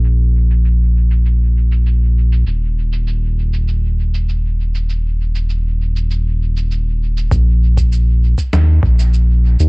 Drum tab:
SH |x--xx--xx--xx--x|x--xx--xx--xx--x|x--xx--xx--xx--x|x--xx--xx--xx--x|
SD |----------------|----------------|----------------|--------o-------|
BD |----------------|----------------|----------------|o--o---o--o-----|